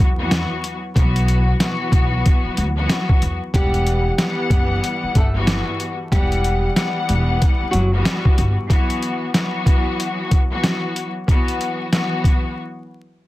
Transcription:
0.00 upright bass E2
0.18 string section E3 F#3 B3 F#4
0.31 snare, closed hi-hat
0.64 closed hi-hat
0.96 upright bass B1, string section E3 F#3 B3 F#4, kick, closed hi-hat
1.16 closed hi-hat
1.28 closed hi-hat
1.60 string section E3 F#3 B3 F#4, snare, closed hi-hat
1.92 upright bass B1, kick, closed hi-hat
2.26 kick, closed hi-hat
2.45 muted upright bass stroke
2.57 upright bass D2, closed hi-hat
2.76 string section E3 F#3 B3 F#4
2.89 snare, closed hi-hat
3.09 kick
3.22 upright bass E2, closed hi-hat
3.54 upright bass E1, string section E3 G3 B3 F#5, nylon-string guitar G3 G4, kick, closed hi-hat
3.74 closed hi-hat
3.87 closed hi-hat
4.18 string section E3 G3 B3 F#5, snare, closed hi-hat
4.50 upright bass F#1, kick, closed hi-hat
4.84 closed hi-hat
5.03 muted upright bass stroke
5.15 upright bass G1, nylon-string guitar A3 A4, kick, closed hi-hat
5.34 string section E3 G3 B3 F#4
5.47 snare, closed hi-hat
5.80 closed hi-hat
6.12 upright bass E1, string section E3 G3 B3 F#5, nylon-string guitar G3 G4, kick, closed hi-hat
6.32 closed hi-hat
6.44 closed hi-hat
6.75 string section E3 G3 B3 F#5, snare, closed hi-hat
7.09 upright bass E1, closed hi-hat
7.42 kick, closed hi-hat
7.61 muted upright bass stroke
7.71 upright bass F#1, nylon-string guitar F#3 F#4, closed hi-hat
7.92 string section E3 G3 B3 F#4
8.05 snare, closed hi-hat
8.25 kick
8.38 upright bass G1, closed hi-hat
8.69 string section E3 F#3 B3 F#4, kick, closed hi-hat
8.90 closed hi-hat
9.02 closed hi-hat
9.34 string section E3 F#3 B3 F#4, snare, closed hi-hat
9.66 kick, closed hi-hat
10.00 closed hi-hat
10.31 kick, closed hi-hat
10.50 string section E3 F#3 B3 F#4
10.64 snare, closed hi-hat
10.96 closed hi-hat
11.28 string section E3 F#3 B3 F#4, kick, closed hi-hat
11.48 closed hi-hat
11.61 closed hi-hat
11.92 string section E3 F#3 B3 F#4, snare, closed hi-hat
12.24 kick, closed hi-hat

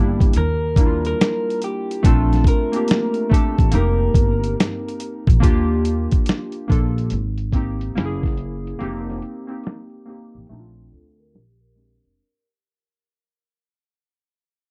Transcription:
Already playing: upright bass G1, synth keys G3 A#3 D4 E4, clean electric guitar G4
0.20 kick, closed hi-hat
0.33 upright bass D#2, closed hi-hat
0.37 clean electric guitar A#4
0.76 synth keys G3 A#3 D4, kick, closed hi-hat
0.80 synth keys E4
0.86 synth keys F4
1.05 clean electric guitar A#4, closed hi-hat
1.21 snare, closed hi-hat
1.50 closed hi-hat
1.62 clean electric guitar G4, closed hi-hat
1.91 closed hi-hat
2.03 upright bass A#1, synth keys A3 C4 D4 F4, clean electric guitar A4, kick, closed hi-hat
2.33 snare, closed hi-hat
2.44 clean electric guitar A#4, kick, closed hi-hat
2.72 synth keys A#3 C4 D4, closed hi-hat
2.76 synth keys G4
2.88 snare, closed hi-hat
3.14 closed hi-hat
3.29 synth keys A3 C4 D4 G4, clean electric guitar A4, kick
3.34 closed hi-hat
3.58 upright bass A1, kick, closed hi-hat
3.71 upright bass F1, synth keys A#3 C4 D#4 G4, clean electric guitar A#4, closed hi-hat
4.14 upright bass G1, kick, closed hi-hat
4.44 closed hi-hat
4.60 snare, closed hi-hat
4.88 closed hi-hat
5.00 closed hi-hat
5.27 upright bass A#1, kick, closed hi-hat
5.40 upright bass D#2, synth keys A#3 D4 F4 G4, kick, closed hi-hat
5.85 closed hi-hat
6.11 kick, closed hi-hat
6.26 snare, closed hi-hat
6.52 closed hi-hat
6.68 upright bass A#1, synth keys A#3 D4 F4 A4, kick
6.72 closed hi-hat
6.98 closed hi-hat
7.10 upright bass G#1, closed hi-hat
7.38 closed hi-hat
7.52 synth keys A#3 C4 D#4, kick, closed hi-hat
7.57 synth keys G4
7.81 closed hi-hat
7.95 upright bass F#1, synth keys A#3 C#4 E4 G4, snare, closed hi-hat
8.05 synth keys G#4
8.23 kick, snare, closed hi-hat
8.37 closed hi-hat
8.67 closed hi-hat
8.79 upright bass F1, synth keys A#3 C4 D#4 G4, closed hi-hat
9.10 snare
9.22 closed hi-hat
9.47 synth keys A#3 C4 D#4, closed hi-hat
9.51 synth keys G4
9.64 snare, closed hi-hat
9.90 closed hi-hat
10.06 synth keys A#3 C4 D#4 G4
10.10 closed hi-hat
10.35 upright bass A1, closed hi-hat
10.47 upright bass A#1, synth keys A3 C4, closed hi-hat
10.52 synth keys D4 D#4
10.59 synth keys F4
10.75 closed hi-hat
10.91 upright bass D2, vibraphone F4 A4, closed hi-hat
11.19 vibraphone A#4, closed hi-hat
11.33 upright bass A#1, vibraphone G4, snare
11.60 vibraphone G4 A#4
11.75 synth keys G#3 C4 D4
11.79 synth keys G4
12.03 upright bass F1, vibraphone A#4 D5

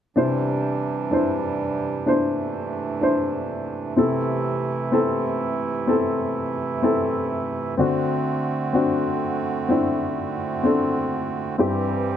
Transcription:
0.16 upright piano C3 D4 E4 C5, harmonium C3 E3 G3 D4
1.11 upright piano D4 E4 C5
2.06 harmonium A3, upright piano D4 E4 C5
3.01 upright piano D4 E4 C5
3.96 upright piano C3 C4 E4 A4, harmonium E3 A3 E4
4.92 upright piano C4 E4 A4
5.87 upright piano C4 E4 A4
6.82 upright piano C4 E4 A4
7.77 upright piano D3 C4 D4 F#4, harmonium D3 A3 C4 F#4
8.73 upright piano C4 D4 F#4
9.69 upright piano C4 D4 E4
10.63 upright piano C4 D4 A4
11.58 harmonium G2 E3 G3 C4 G4, upright piano G2 C4 E4 G4

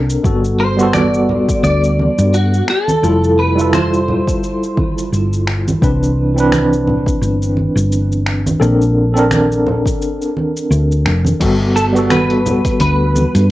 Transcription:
Already playing: fingered electric bass C2, tine electric piano C4 D4 A4 A#4
0.10 shaker
0.24 fingered electric bass G1, tine electric piano G3 B3 F#4 A4, kick, shaker
0.44 shaker
0.60 clean electric guitar C5
0.77 tine electric piano G3 B3 F#4, shaker
0.83 tine electric piano A4
0.93 clean electric guitar D5, finger snap, high conga, shaker
1.14 shaker
1.29 low conga
1.49 kick, shaker
1.63 fingered electric bass D2, clean electric guitar D5, shaker
1.84 shaker
1.99 high conga
2.18 fingered electric bass G2, shaker
2.34 clean electric guitar F#4, shaker
2.54 shaker
2.68 clean electric guitar A4, finger snap
2.88 high conga, shaker
3.02 fingered electric bass F1, tine electric piano G3 E4 F4 A4, shaker
3.24 shaker
3.39 clean electric guitar B4
3.55 tine electric piano G3 E4 F4, shaker
3.61 tine electric piano A4
3.73 clean electric guitar C5, finger snap, high conga, shaker
3.94 shaker
4.08 low conga
4.27 kick, shaker
4.43 shaker
4.63 shaker
4.77 kick, high conga
4.98 shaker
5.12 fingered electric bass G1, shaker
5.33 shaker
5.47 finger snap
5.68 high conga, shaker
5.82 fingered electric bass C2, tine electric piano E3 C4 D4 B4, kick, shaker
6.03 shaker
6.34 tine electric piano E3 C4 D4, shaker
6.40 tine electric piano B4
6.52 finger snap, high conga, shaker
6.73 shaker
6.87 low conga
7.06 kick, shaker
7.21 fingered electric bass G1, shaker
7.42 shaker
7.57 high conga
7.76 fingered electric bass G1, shaker
7.92 shaker
8.12 shaker
8.26 finger snap
8.46 high conga, shaker
8.60 fingered electric bass A#1, tine electric piano C4 D4 A4 A#4, shaker
8.82 shaker
9.14 tine electric piano C4 D4 A4, shaker
9.19 tine electric piano A#4
9.31 finger snap, high conga, shaker
9.52 shaker
9.67 low conga
9.86 kick, shaker
10.02 shaker
10.21 shaker
10.37 high conga
10.57 shaker
10.71 fingered electric bass D2, shaker
10.92 shaker
11.06 fingered electric bass F1, finger snap
11.25 high conga, shaker
11.40 fingered electric bass G1, tine electric piano G3 B3 F#4 A4, kick, closed hi-hat, crash, shaker
11.76 clean electric guitar A4, shaker
11.93 tine electric piano G3 B3 F#4, shaker
11.98 tine electric piano A4
12.10 clean electric guitar B4, finger snap, closed hi-hat, high conga, shaker
12.30 closed hi-hat
12.46 low conga, shaker
12.65 kick, closed hi-hat, shaker
12.80 fingered electric bass D2, clean electric guitar B4, closed hi-hat, shaker
13.16 high conga, shaker
13.35 fingered electric bass G2, closed hi-hat, shaker

